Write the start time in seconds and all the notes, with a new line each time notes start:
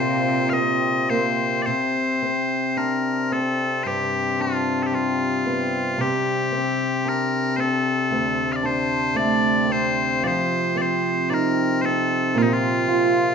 Already playing: A#2 C3 D3 A#3 C4 F4 C5
0.50 C4 D#5 F5
1.10 A#3 C5
1.62 C5 D5
1.67 C3
2.22 C4
2.77 D4 A#4
3.32 C4 A4
3.84 G2 G4 C5
4.39 D4 F4
4.83 G4 A4
4.92 G3 F4
5.46 B3
5.98 C3 G4
6.52 C4
7.05 D4 A#4
7.56 C4 A4 C5
8.11 D2
8.52 D5 F5
8.63 D4 C5
9.15 A3 D5
9.69 C4 C5
10.23 F3 C5 D5
10.76 C4 D5
10.81 C5
11.30 D#4 D5
11.34 A#4
11.81 C4 C5
11.86 A4
12.35 A#2 F4
12.42 D#4
12.53 F4
12.88 F4